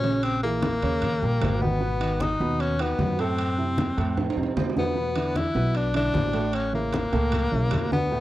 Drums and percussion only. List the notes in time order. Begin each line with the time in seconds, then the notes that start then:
0.03 high conga, high timbale
0.23 high conga, high timbale
0.43 high conga
0.62 high conga, high timbale, low timbale
0.82 high conga, high timbale
1.02 high conga, low conga, high timbale
1.22 high conga, low conga
1.42 high conga, high timbale, low timbale
1.62 high conga
1.81 high conga
2.01 high conga, high timbale
2.20 high conga, high timbale, low timbale
2.40 high conga
2.59 high conga, high timbale
2.79 high conga, high timbale
2.99 high conga, low timbale
3.19 high timbale
3.38 high conga, high timbale
3.58 high conga
3.78 high conga, high timbale, low timbale
3.98 high conga, high timbale
4.17 high conga, low conga, high timbale
4.30 high timbale
4.38 high conga
4.43 high timbale
4.57 high conga, low timbale
4.70 low timbale
4.77 high conga
4.83 low timbale
4.96 high conga
5.16 high conga, high timbale
5.36 high conga, high timbale, low timbale
5.56 high conga
5.75 high conga, high timbale
5.94 high conga, high timbale
6.14 high conga, low timbale
6.33 high timbale
6.53 high conga, high timbale
6.74 high conga
6.93 high conga, high timbale, low timbale
7.13 high conga, high timbale
7.32 high conga, low conga, high timbale
7.53 high conga
7.71 high conga, high timbale, low timbale
7.92 high conga
8.11 high conga